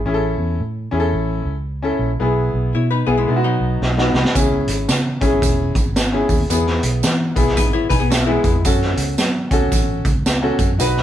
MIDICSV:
0, 0, Header, 1, 5, 480
1, 0, Start_track
1, 0, Key_signature, 4, "major"
1, 0, Tempo, 537153
1, 54, Time_signature, 4, 2, 24, 8
1, 9856, End_track
2, 0, Start_track
2, 0, Title_t, "Grand piano"
2, 0, Program_c, 0, 0
2, 51, Note_on_c, 0, 61, 84
2, 60, Note_on_c, 0, 64, 80
2, 68, Note_on_c, 0, 68, 72
2, 126, Note_on_c, 0, 69, 97
2, 130, Note_off_c, 0, 68, 0
2, 510, Note_off_c, 0, 61, 0
2, 515, Note_off_c, 0, 64, 0
2, 548, Note_off_c, 0, 69, 0
2, 815, Note_on_c, 0, 61, 92
2, 822, Note_on_c, 0, 64, 81
2, 832, Note_on_c, 0, 68, 84
2, 874, Note_off_c, 0, 68, 0
2, 891, Note_on_c, 0, 69, 102
2, 1337, Note_off_c, 0, 61, 0
2, 1341, Note_off_c, 0, 64, 0
2, 1375, Note_off_c, 0, 69, 0
2, 1631, Note_on_c, 0, 61, 86
2, 1638, Note_on_c, 0, 64, 75
2, 1648, Note_on_c, 0, 69, 94
2, 1864, Note_off_c, 0, 61, 0
2, 1868, Note_off_c, 0, 64, 0
2, 1873, Note_off_c, 0, 69, 0
2, 1964, Note_on_c, 0, 59, 82
2, 1971, Note_on_c, 0, 64, 84
2, 1980, Note_on_c, 0, 68, 93
2, 2427, Note_off_c, 0, 59, 0
2, 2431, Note_off_c, 0, 64, 0
2, 2435, Note_off_c, 0, 68, 0
2, 2738, Note_on_c, 0, 59, 85
2, 2746, Note_on_c, 0, 64, 85
2, 2754, Note_on_c, 0, 68, 101
2, 2916, Note_off_c, 0, 59, 0
2, 2930, Note_on_c, 0, 59, 83
2, 2932, Note_off_c, 0, 64, 0
2, 2938, Note_on_c, 0, 63, 80
2, 2939, Note_off_c, 0, 68, 0
2, 2945, Note_on_c, 0, 64, 68
2, 3005, Note_on_c, 0, 66, 90
2, 3009, Note_off_c, 0, 64, 0
2, 3412, Note_off_c, 0, 59, 0
2, 3416, Note_off_c, 0, 63, 0
2, 3418, Note_on_c, 0, 75, 68
2, 3449, Note_off_c, 0, 66, 0
2, 3550, Note_on_c, 0, 59, 79
2, 3558, Note_on_c, 0, 63, 79
2, 3565, Note_on_c, 0, 66, 87
2, 3686, Note_off_c, 0, 75, 0
2, 3706, Note_on_c, 0, 83, 66
2, 3783, Note_off_c, 0, 59, 0
2, 3787, Note_off_c, 0, 63, 0
2, 3790, Note_off_c, 0, 66, 0
2, 3881, Note_off_c, 0, 83, 0
2, 3882, Note_on_c, 0, 61, 90
2, 3892, Note_on_c, 0, 64, 79
2, 3901, Note_on_c, 0, 68, 89
2, 4346, Note_off_c, 0, 61, 0
2, 4350, Note_off_c, 0, 64, 0
2, 4355, Note_off_c, 0, 68, 0
2, 4654, Note_on_c, 0, 61, 96
2, 4661, Note_on_c, 0, 64, 86
2, 4669, Note_on_c, 0, 68, 103
2, 5176, Note_off_c, 0, 61, 0
2, 5180, Note_off_c, 0, 64, 0
2, 5183, Note_off_c, 0, 68, 0
2, 5471, Note_on_c, 0, 61, 78
2, 5482, Note_on_c, 0, 64, 75
2, 5491, Note_on_c, 0, 68, 92
2, 5703, Note_off_c, 0, 61, 0
2, 5709, Note_off_c, 0, 64, 0
2, 5713, Note_off_c, 0, 68, 0
2, 5807, Note_on_c, 0, 59, 84
2, 5813, Note_on_c, 0, 64, 77
2, 5821, Note_on_c, 0, 68, 86
2, 6268, Note_off_c, 0, 59, 0
2, 6271, Note_off_c, 0, 64, 0
2, 6275, Note_off_c, 0, 68, 0
2, 6574, Note_on_c, 0, 59, 89
2, 6581, Note_on_c, 0, 64, 86
2, 6589, Note_on_c, 0, 68, 101
2, 7063, Note_on_c, 0, 80, 74
2, 7095, Note_off_c, 0, 59, 0
2, 7099, Note_off_c, 0, 64, 0
2, 7103, Note_off_c, 0, 68, 0
2, 7240, Note_off_c, 0, 80, 0
2, 7256, Note_on_c, 0, 76, 69
2, 7388, Note_on_c, 0, 59, 86
2, 7396, Note_on_c, 0, 64, 80
2, 7404, Note_on_c, 0, 68, 94
2, 7622, Note_off_c, 0, 59, 0
2, 7626, Note_off_c, 0, 64, 0
2, 7630, Note_off_c, 0, 68, 0
2, 7701, Note_off_c, 0, 76, 0
2, 7730, Note_on_c, 0, 61, 83
2, 7736, Note_on_c, 0, 66, 83
2, 7744, Note_on_c, 0, 69, 97
2, 8189, Note_off_c, 0, 61, 0
2, 8192, Note_off_c, 0, 66, 0
2, 8196, Note_off_c, 0, 69, 0
2, 8496, Note_on_c, 0, 61, 96
2, 8507, Note_on_c, 0, 66, 86
2, 8517, Note_on_c, 0, 69, 108
2, 9017, Note_off_c, 0, 61, 0
2, 9023, Note_off_c, 0, 66, 0
2, 9027, Note_off_c, 0, 69, 0
2, 9308, Note_on_c, 0, 61, 84
2, 9317, Note_on_c, 0, 66, 81
2, 9325, Note_on_c, 0, 69, 93
2, 9542, Note_off_c, 0, 61, 0
2, 9547, Note_off_c, 0, 66, 0
2, 9551, Note_off_c, 0, 69, 0
2, 9639, Note_on_c, 0, 63, 87
2, 9646, Note_on_c, 0, 66, 79
2, 9656, Note_on_c, 0, 71, 94
2, 9856, Note_off_c, 0, 63, 0
2, 9856, Note_off_c, 0, 66, 0
2, 9856, Note_off_c, 0, 71, 0
2, 9856, End_track
3, 0, Start_track
3, 0, Title_t, "Hollow-body jazz guitar"
3, 0, Program_c, 1, 26
3, 2454, Note_on_c, 1, 64, 58
3, 2456, Note_on_c, 1, 73, 58
3, 2591, Note_off_c, 1, 73, 0
3, 2593, Note_off_c, 1, 64, 0
3, 2596, Note_on_c, 1, 71, 80
3, 2603, Note_on_c, 1, 63, 62
3, 2735, Note_off_c, 1, 71, 0
3, 2739, Note_off_c, 1, 63, 0
3, 2739, Note_on_c, 1, 68, 80
3, 2746, Note_on_c, 1, 59, 65
3, 2832, Note_off_c, 1, 68, 0
3, 2835, Note_off_c, 1, 59, 0
3, 2838, Note_on_c, 1, 64, 69
3, 2843, Note_on_c, 1, 56, 63
3, 3066, Note_off_c, 1, 64, 0
3, 3069, Note_off_c, 1, 56, 0
3, 3076, Note_on_c, 1, 63, 75
3, 3083, Note_on_c, 1, 54, 66
3, 3761, Note_off_c, 1, 63, 0
3, 3765, Note_off_c, 1, 54, 0
3, 6769, Note_on_c, 1, 71, 68
3, 6774, Note_on_c, 1, 63, 61
3, 6906, Note_off_c, 1, 71, 0
3, 6910, Note_on_c, 1, 73, 82
3, 6911, Note_off_c, 1, 63, 0
3, 6917, Note_on_c, 1, 64, 74
3, 7051, Note_off_c, 1, 73, 0
3, 7055, Note_off_c, 1, 64, 0
3, 7056, Note_on_c, 1, 71, 85
3, 7062, Note_on_c, 1, 63, 69
3, 7147, Note_on_c, 1, 68, 82
3, 7149, Note_off_c, 1, 71, 0
3, 7152, Note_off_c, 1, 63, 0
3, 7153, Note_on_c, 1, 59, 66
3, 7238, Note_off_c, 1, 68, 0
3, 7242, Note_on_c, 1, 66, 81
3, 7245, Note_off_c, 1, 59, 0
3, 7384, Note_on_c, 1, 64, 70
3, 7385, Note_off_c, 1, 66, 0
3, 7390, Note_on_c, 1, 56, 64
3, 7708, Note_off_c, 1, 64, 0
3, 7712, Note_off_c, 1, 56, 0
3, 9856, End_track
4, 0, Start_track
4, 0, Title_t, "Fingered electric bass"
4, 0, Program_c, 2, 33
4, 51, Note_on_c, 2, 33, 98
4, 301, Note_off_c, 2, 33, 0
4, 341, Note_on_c, 2, 40, 80
4, 505, Note_off_c, 2, 40, 0
4, 538, Note_on_c, 2, 45, 91
4, 785, Note_off_c, 2, 45, 0
4, 825, Note_on_c, 2, 40, 88
4, 988, Note_off_c, 2, 40, 0
4, 1010, Note_on_c, 2, 33, 105
4, 1261, Note_off_c, 2, 33, 0
4, 1298, Note_on_c, 2, 37, 80
4, 1712, Note_off_c, 2, 37, 0
4, 1779, Note_on_c, 2, 34, 84
4, 1944, Note_off_c, 2, 34, 0
4, 1970, Note_on_c, 2, 35, 99
4, 2221, Note_off_c, 2, 35, 0
4, 2267, Note_on_c, 2, 35, 88
4, 2428, Note_off_c, 2, 35, 0
4, 2449, Note_on_c, 2, 47, 82
4, 2700, Note_off_c, 2, 47, 0
4, 2745, Note_on_c, 2, 35, 86
4, 2907, Note_off_c, 2, 35, 0
4, 2930, Note_on_c, 2, 47, 108
4, 3180, Note_off_c, 2, 47, 0
4, 3216, Note_on_c, 2, 35, 76
4, 3383, Note_off_c, 2, 35, 0
4, 3406, Note_on_c, 2, 35, 89
4, 3658, Note_off_c, 2, 35, 0
4, 3697, Note_on_c, 2, 36, 84
4, 3781, Note_off_c, 2, 36, 0
4, 3890, Note_on_c, 2, 37, 96
4, 4140, Note_off_c, 2, 37, 0
4, 4174, Note_on_c, 2, 32, 86
4, 4341, Note_off_c, 2, 32, 0
4, 4365, Note_on_c, 2, 49, 89
4, 4617, Note_off_c, 2, 49, 0
4, 4660, Note_on_c, 2, 32, 83
4, 4824, Note_off_c, 2, 32, 0
4, 4846, Note_on_c, 2, 28, 92
4, 5097, Note_off_c, 2, 28, 0
4, 5140, Note_on_c, 2, 32, 88
4, 5553, Note_off_c, 2, 32, 0
4, 5621, Note_on_c, 2, 39, 88
4, 5785, Note_off_c, 2, 39, 0
4, 5812, Note_on_c, 2, 40, 88
4, 6061, Note_off_c, 2, 40, 0
4, 6104, Note_on_c, 2, 35, 88
4, 6266, Note_off_c, 2, 35, 0
4, 6293, Note_on_c, 2, 52, 99
4, 6542, Note_off_c, 2, 52, 0
4, 6580, Note_on_c, 2, 35, 80
4, 6766, Note_off_c, 2, 35, 0
4, 6766, Note_on_c, 2, 32, 89
4, 7018, Note_off_c, 2, 32, 0
4, 7061, Note_on_c, 2, 35, 87
4, 7474, Note_off_c, 2, 35, 0
4, 7542, Note_on_c, 2, 41, 100
4, 7705, Note_off_c, 2, 41, 0
4, 7731, Note_on_c, 2, 42, 88
4, 7980, Note_off_c, 2, 42, 0
4, 8016, Note_on_c, 2, 37, 94
4, 8182, Note_off_c, 2, 37, 0
4, 8209, Note_on_c, 2, 54, 83
4, 8460, Note_off_c, 2, 54, 0
4, 8498, Note_on_c, 2, 37, 83
4, 8663, Note_off_c, 2, 37, 0
4, 8686, Note_on_c, 2, 33, 101
4, 8938, Note_off_c, 2, 33, 0
4, 8981, Note_on_c, 2, 37, 86
4, 9394, Note_off_c, 2, 37, 0
4, 9462, Note_on_c, 2, 42, 93
4, 9626, Note_off_c, 2, 42, 0
4, 9648, Note_on_c, 2, 35, 89
4, 9856, Note_off_c, 2, 35, 0
4, 9856, End_track
5, 0, Start_track
5, 0, Title_t, "Drums"
5, 3413, Note_on_c, 9, 38, 52
5, 3502, Note_off_c, 9, 38, 0
5, 3558, Note_on_c, 9, 38, 69
5, 3647, Note_off_c, 9, 38, 0
5, 3702, Note_on_c, 9, 38, 89
5, 3791, Note_off_c, 9, 38, 0
5, 3797, Note_on_c, 9, 38, 89
5, 3886, Note_off_c, 9, 38, 0
5, 3890, Note_on_c, 9, 42, 84
5, 3891, Note_on_c, 9, 36, 95
5, 3895, Note_on_c, 9, 54, 102
5, 3979, Note_off_c, 9, 42, 0
5, 3980, Note_off_c, 9, 36, 0
5, 3984, Note_off_c, 9, 54, 0
5, 4179, Note_on_c, 9, 42, 83
5, 4193, Note_on_c, 9, 54, 53
5, 4268, Note_off_c, 9, 42, 0
5, 4283, Note_off_c, 9, 54, 0
5, 4366, Note_on_c, 9, 38, 97
5, 4366, Note_on_c, 9, 42, 89
5, 4368, Note_on_c, 9, 54, 106
5, 4455, Note_off_c, 9, 38, 0
5, 4455, Note_off_c, 9, 42, 0
5, 4457, Note_off_c, 9, 54, 0
5, 4660, Note_on_c, 9, 36, 84
5, 4660, Note_on_c, 9, 42, 62
5, 4668, Note_on_c, 9, 54, 51
5, 4749, Note_off_c, 9, 36, 0
5, 4750, Note_off_c, 9, 42, 0
5, 4758, Note_off_c, 9, 54, 0
5, 4845, Note_on_c, 9, 36, 86
5, 4851, Note_on_c, 9, 42, 84
5, 4851, Note_on_c, 9, 54, 97
5, 4934, Note_off_c, 9, 36, 0
5, 4940, Note_off_c, 9, 42, 0
5, 4940, Note_off_c, 9, 54, 0
5, 5140, Note_on_c, 9, 36, 87
5, 5141, Note_on_c, 9, 42, 61
5, 5148, Note_on_c, 9, 54, 57
5, 5229, Note_off_c, 9, 36, 0
5, 5230, Note_off_c, 9, 42, 0
5, 5238, Note_off_c, 9, 54, 0
5, 5325, Note_on_c, 9, 42, 75
5, 5326, Note_on_c, 9, 38, 111
5, 5330, Note_on_c, 9, 54, 105
5, 5415, Note_off_c, 9, 42, 0
5, 5416, Note_off_c, 9, 38, 0
5, 5420, Note_off_c, 9, 54, 0
5, 5618, Note_on_c, 9, 46, 47
5, 5622, Note_on_c, 9, 36, 77
5, 5629, Note_on_c, 9, 54, 63
5, 5708, Note_off_c, 9, 46, 0
5, 5712, Note_off_c, 9, 36, 0
5, 5718, Note_off_c, 9, 54, 0
5, 5808, Note_on_c, 9, 42, 83
5, 5811, Note_on_c, 9, 54, 102
5, 5897, Note_off_c, 9, 42, 0
5, 5901, Note_off_c, 9, 54, 0
5, 5957, Note_on_c, 9, 38, 35
5, 6046, Note_off_c, 9, 38, 0
5, 6102, Note_on_c, 9, 42, 82
5, 6105, Note_on_c, 9, 54, 54
5, 6191, Note_off_c, 9, 42, 0
5, 6194, Note_off_c, 9, 54, 0
5, 6282, Note_on_c, 9, 54, 109
5, 6287, Note_on_c, 9, 38, 100
5, 6287, Note_on_c, 9, 42, 79
5, 6371, Note_off_c, 9, 54, 0
5, 6376, Note_off_c, 9, 38, 0
5, 6376, Note_off_c, 9, 42, 0
5, 6580, Note_on_c, 9, 36, 81
5, 6582, Note_on_c, 9, 42, 63
5, 6582, Note_on_c, 9, 54, 55
5, 6669, Note_off_c, 9, 36, 0
5, 6671, Note_off_c, 9, 42, 0
5, 6671, Note_off_c, 9, 54, 0
5, 6679, Note_on_c, 9, 38, 38
5, 6764, Note_on_c, 9, 54, 105
5, 6767, Note_on_c, 9, 36, 91
5, 6769, Note_off_c, 9, 38, 0
5, 6774, Note_on_c, 9, 42, 81
5, 6854, Note_off_c, 9, 54, 0
5, 6856, Note_off_c, 9, 36, 0
5, 6863, Note_off_c, 9, 42, 0
5, 7063, Note_on_c, 9, 36, 82
5, 7065, Note_on_c, 9, 54, 51
5, 7066, Note_on_c, 9, 42, 69
5, 7152, Note_off_c, 9, 36, 0
5, 7154, Note_off_c, 9, 54, 0
5, 7155, Note_off_c, 9, 42, 0
5, 7251, Note_on_c, 9, 42, 74
5, 7252, Note_on_c, 9, 38, 114
5, 7252, Note_on_c, 9, 54, 97
5, 7341, Note_off_c, 9, 42, 0
5, 7341, Note_off_c, 9, 54, 0
5, 7342, Note_off_c, 9, 38, 0
5, 7541, Note_on_c, 9, 42, 67
5, 7543, Note_on_c, 9, 36, 85
5, 7544, Note_on_c, 9, 54, 60
5, 7631, Note_off_c, 9, 42, 0
5, 7632, Note_off_c, 9, 36, 0
5, 7633, Note_off_c, 9, 54, 0
5, 7726, Note_on_c, 9, 42, 88
5, 7730, Note_on_c, 9, 36, 89
5, 7730, Note_on_c, 9, 54, 105
5, 7815, Note_off_c, 9, 42, 0
5, 7819, Note_off_c, 9, 36, 0
5, 7820, Note_off_c, 9, 54, 0
5, 7880, Note_on_c, 9, 38, 32
5, 7969, Note_off_c, 9, 38, 0
5, 8019, Note_on_c, 9, 42, 83
5, 8021, Note_on_c, 9, 54, 55
5, 8108, Note_off_c, 9, 42, 0
5, 8110, Note_off_c, 9, 54, 0
5, 8203, Note_on_c, 9, 54, 114
5, 8205, Note_on_c, 9, 38, 102
5, 8205, Note_on_c, 9, 42, 85
5, 8293, Note_off_c, 9, 54, 0
5, 8295, Note_off_c, 9, 38, 0
5, 8295, Note_off_c, 9, 42, 0
5, 8497, Note_on_c, 9, 42, 60
5, 8498, Note_on_c, 9, 36, 88
5, 8501, Note_on_c, 9, 54, 55
5, 8586, Note_off_c, 9, 42, 0
5, 8587, Note_off_c, 9, 36, 0
5, 8591, Note_off_c, 9, 54, 0
5, 8684, Note_on_c, 9, 36, 89
5, 8684, Note_on_c, 9, 54, 94
5, 8691, Note_on_c, 9, 42, 81
5, 8773, Note_off_c, 9, 36, 0
5, 8774, Note_off_c, 9, 54, 0
5, 8780, Note_off_c, 9, 42, 0
5, 8979, Note_on_c, 9, 42, 64
5, 8980, Note_on_c, 9, 36, 85
5, 8983, Note_on_c, 9, 54, 53
5, 9069, Note_off_c, 9, 36, 0
5, 9069, Note_off_c, 9, 42, 0
5, 9072, Note_off_c, 9, 54, 0
5, 9167, Note_on_c, 9, 42, 77
5, 9168, Note_on_c, 9, 38, 117
5, 9168, Note_on_c, 9, 54, 109
5, 9257, Note_off_c, 9, 42, 0
5, 9257, Note_off_c, 9, 54, 0
5, 9258, Note_off_c, 9, 38, 0
5, 9459, Note_on_c, 9, 42, 70
5, 9463, Note_on_c, 9, 36, 82
5, 9466, Note_on_c, 9, 54, 62
5, 9548, Note_off_c, 9, 42, 0
5, 9552, Note_off_c, 9, 36, 0
5, 9555, Note_off_c, 9, 54, 0
5, 9646, Note_on_c, 9, 42, 86
5, 9648, Note_on_c, 9, 54, 105
5, 9736, Note_off_c, 9, 42, 0
5, 9737, Note_off_c, 9, 54, 0
5, 9799, Note_on_c, 9, 38, 33
5, 9856, Note_off_c, 9, 38, 0
5, 9856, End_track
0, 0, End_of_file